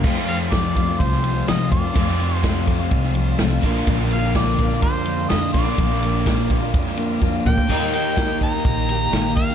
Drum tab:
CC |x---------------|----------------|----------------|----------------|
RD |--x-x-x-x-x-x-x-|x-x-x-x-x-x-x-x-|x-x-x-x-x-x-x-x-|x-x-x-x-x-x-----|
SD |-o--o----o--o---|-o--o----o--o---|----o-------o---|----o----o------|
T2 |----------------|----------------|----------------|--------------o-|
BD |o---o-o-o-----o-|o---o-o-o-----o-|o---o-o-o-----o-|o---o-o-o---o--o|

CC |x---------------|
RD |--x-x-x-x-x-x-x-|
SD |-o--o-------o---|
T2 |----------------|
BD |o---o-o-o-----o-|